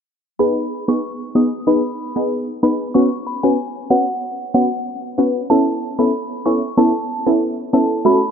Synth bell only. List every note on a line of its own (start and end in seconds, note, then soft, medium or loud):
0.39 0.67 B5 medium
0.89 1.16 C#6 medium
1.36 1.63 D#6 medium
1.67 2.13 B5 medium
2.63 2.78 B5 medium
2.94 3.09 C#6 loud
3.27 3.41 B5 medium
3.43 3.57 G#5 medium
3.90 4.05 F#5 medium
4.54 4.69 F#5 medium
5.50 5.78 A5 medium
5.99 6.27 B5 medium
6.46 6.74 C#6 medium
6.78 7.24 A5 medium
7.73 7.88 A5 medium
8.06 8.20 B5 medium